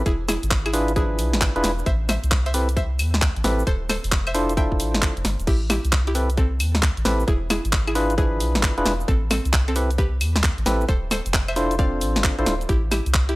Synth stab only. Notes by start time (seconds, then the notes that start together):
0.73 D4 E4 F4 G#4 B4
0.96 F3 D4 E4 G#4 B4
1.56 D4 E4 F4 G#4 B4
2.54 C4 E4 G4 A4 B4
3.44 C4 E4 G4 A4 B4
4.34 D4 E4 F4 A4 C5
4.57 D4 E4 F4 A4 C5
6.15 C4 E4 G4 A4 B4
7.05 C4 E4 G4 A4 B4
7.95 D4 E4 F4 G#4 B4
8.18 F3 D4 E4 G#4 B4
8.78 D4 E4 F4 G#4 B4
9.76 C4 E4 G4 A4 B4
10.66 C4 E4 G4 A4 B4
11.56 D4 E4 F4 A4 C5
11.79 C4 D4 F4 A4 C5
12.39 D4 E4 F4 A4 C5